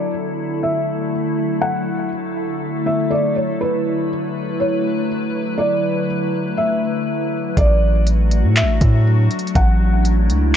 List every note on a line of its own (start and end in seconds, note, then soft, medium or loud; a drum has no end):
0.00 7.53 D3 medium
0.00 7.53 F#3 medium
0.00 7.53 A3 medium
0.00 7.53 E4 medium
0.00 3.56 A4 medium
0.00 0.10 D5 medium
0.63 1.10 E5 medium
1.61 2.08 F#5 medium
2.86 3.10 E5 medium
3.11 3.34 D5 medium
3.36 3.59 C#5 medium
3.60 7.53 B4 medium
3.60 4.07 B4 medium
4.60 5.06 C#5 medium
5.58 6.05 D5 medium
6.57 7.53 E5 medium
7.57 8.45 A1 loud
7.57 10.56 F#3 medium
7.57 10.56 A3 medium
7.57 10.56 D4 medium
7.57 9.53 F#4 medium
7.57 8.04 D5 loud
7.57 kick loud
7.57 closed hi-hat medium
8.07 closed hi-hat medium
8.31 closed hi-hat medium
8.44 8.64 A2 loud
8.56 9.03 E5 medium
8.56 clap loud
8.56 closed hi-hat medium
8.62 8.80 A1 medium
8.81 9.29 A2 loud
8.81 kick medium
8.81 closed hi-hat medium
9.31 closed hi-hat medium
9.39 closed hi-hat medium
9.47 closed hi-hat medium
9.55 10.31 A1 loud
9.55 10.56 E4 medium
9.55 10.02 F#5 medium
9.55 kick loud
9.55 closed hi-hat medium
10.05 closed hi-hat medium
10.30 10.53 C#2 medium
10.30 closed hi-hat medium